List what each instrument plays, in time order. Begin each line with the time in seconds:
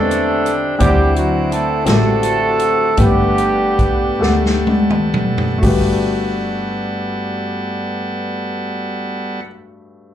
Already playing: double bass E2, tonewheel organ D3 C4 G4 B4, grand piano E3 C4 G4 B4 D5 D#5 E5, horn section A3 C4 D4 A4
0.11 closed hi-hat
0.46 closed hi-hat
0.79 double bass D2, grand piano D3 C4 E4 D5 F#5, tonewheel organ E3 C4 D4 F#5, horn section G3 C4 E4 G4, kick, closed hi-hat
1.15 horn section F#3 F#4, closed hi-hat
1.50 horn section A3 A4, closed hi-hat
1.85 double bass A1, horn section A3 C4 F#4 A4, grand piano C4 E4 F#4 G4, snare, closed hi-hat
1.94 grand piano A4
2.23 closed hi-hat
2.59 closed hi-hat
2.97 double bass G1, grand piano G2 A3 G4 B4 F#5, tonewheel organ G3 B3 G4 F#5, horn section G3 G4, kick, closed hi-hat
3.02 horn section B3 D4, tonewheel organ A4
3.38 closed hi-hat
3.79 kick, closed hi-hat
4.19 double bass D2, grand piano A3 G4 A4 F#5, snare
4.46 snare
4.67 high tom
4.90 mid tom
5.14 mid tom
5.38 floor tom
5.58 grand piano A3 F#4
5.63 double bass G1, grand piano G2 G4, tonewheel organ G3 B3 A4 F#5, kick, open hi-hat
5.68 grand piano B4